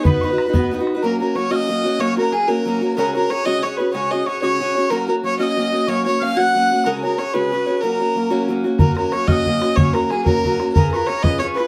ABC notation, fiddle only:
X:1
M:6/8
L:1/16
Q:3/8=123
K:B
V:1 name="Fiddle"
B8 z4 | [K:F#] A2 A2 c2 d6 | c2 A2 G2 A6 | A2 A2 c2 d2 c2 B2 |
c2 d3/2 d/2 c2 c6 | A2 A2 c2 d6 | c2 c2 e2 f6 | A2 A2 c2 B6 |
A8 z4 | A2 A2 c2 d6 | c2 A2 G2 A6 | A2 A2 c2 d2 c2 B2 |]